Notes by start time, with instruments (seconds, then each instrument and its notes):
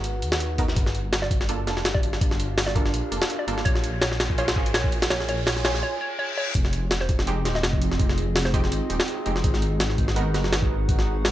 Already playing: detuned saw bass G#1, ambient pad D#4 F#4 G#4 B4 F#5
0.04 closed hi-hat
0.22 detuned saw bass D#2, closed hi-hat
0.32 snare
0.40 closed hi-hat
0.58 synth stab B3 D#4 F#4 A#4, kick, closed hi-hat
0.68 snare
0.76 detuned saw bass G1, kick, closed hi-hat, riser
0.86 snare
0.95 closed hi-hat
1.04 ambient pad D4 F4 G4 A#4 F5
1.13 snare, closed hi-hat
1.22 synth pluck D5, snare
1.31 kick, closed hi-hat
1.41 snare
1.49 synth stab A#3 D4 F4 A4, closed hi-hat
1.67 detuned saw bass F1, synth stab A#3 D4 F4 A4, snare, closed hi-hat
1.77 snare
1.85 detuned saw bass G1, snare, closed hi-hat
1.94 synth pluck D5, kick
2.03 closed hi-hat
2.13 snare
2.21 detuned saw bass G1, kick, closed hi-hat
2.31 snare
2.40 closed hi-hat
2.49 ambient pad D4 F4 G4 A#4 F5
2.58 snare, open hi-hat
2.67 synth pluck D5, snare
2.75 synth stab A#3 D4 F4 A4, kick, closed hi-hat
2.86 snare
2.93 detuned saw bass A#1, closed hi-hat
3.11 detuned saw bass F1, synth stab A#3 D4 F4 A4, closed hi-hat
3.22 snare
3.30 closed hi-hat
3.39 synth pluck D5
3.47 detuned saw bass G1, synth stab A#3 D4 F4 A4, closed hi-hat
3.58 snare
3.65 detuned saw bass A#1, synth pluck C#5, kick, closed hi-hat
3.75 snare
3.84 closed hi-hat
3.93 ambient pad F4 G#4 A#4 C#5 G#5
4.02 synth pluck C#5, snare, closed hi-hat
4.12 snare
4.20 snare, closed hi-hat
4.30 kick
4.38 synth stab C#4 F4 G#4 C5, synth pluck C#5, closed hi-hat
4.48 snare, closed hi-hat
4.56 detuned saw bass G#1, synth stab C#4 F4 G#4 C5, kick
4.66 closed hi-hat
4.74 detuned saw bass A#1, synth pluck C#5, snare, closed hi-hat
4.84 kick
4.92 closed hi-hat
5.02 snare, closed hi-hat
5.10 detuned saw bass A#1, synth pluck C#5, snare, closed hi-hat
5.20 snare
5.29 synth pluck C#5, closed hi-hat
5.47 synth pluck C#5, snare, open hi-hat
5.57 snare
5.64 synth stab C#4 F4 G#4 C5, synth pluck C#5, snare, closed hi-hat
5.75 snare
5.83 synth pluck C#5, reverse cymbal
6.01 synth pluck C#5
6.19 synth pluck C#5
6.38 synth pluck C#5
6.55 detuned saw bass F1, kick, closed hi-hat
6.65 snare
6.73 closed hi-hat
6.83 ambient pad C4 D#4 F4 G#4 D#5
6.91 snare, closed hi-hat
7.01 synth pluck C5, snare
7.09 kick, closed hi-hat
7.19 snare
7.27 synth stab G#3 C4 D#4 G4, closed hi-hat
7.45 detuned saw bass D#1, synth stab G#3 C4 D#4 G4, snare, closed hi-hat
7.55 synth pluck D#5, snare
7.63 detuned saw bass F1, snare, closed hi-hat
7.73 kick
7.82 closed hi-hat
7.91 snare
7.99 detuned saw bass F1, kick, closed hi-hat
8.09 snare
8.18 closed hi-hat
8.27 ambient pad C4 D#4 F4 G#4 D#5
8.36 snare, open hi-hat
8.45 synth pluck C5, snare
8.54 synth stab G#3 C4 D#4 G4, kick, closed hi-hat
8.64 snare
8.72 detuned saw bass G#1, closed hi-hat
8.90 detuned saw bass D#1, synth stab G#3 C4 D#4 G4, closed hi-hat
9.00 snare
9.08 closed hi-hat
9.26 detuned saw bass F1, synth stab G#3 C4 D#4 G4, closed hi-hat
9.36 snare
9.44 detuned saw bass G#1, kick, closed hi-hat
9.54 snare
9.62 closed hi-hat
9.72 ambient pad D#4 F#4 G#4 B4 F#5
9.80 snare, closed hi-hat
9.90 snare
9.98 kick, closed hi-hat
10.08 snare
10.16 synth stab B3 D#4 F#4 A#4, closed hi-hat
10.34 detuned saw bass F#1, synth stab B3 D#4 F#4 A#4, snare, closed hi-hat
10.44 snare
10.52 detuned saw bass G#1, snare, closed hi-hat
10.62 kick
10.89 detuned saw bass G#1, kick, closed hi-hat
10.99 snare
11.25 snare, open hi-hat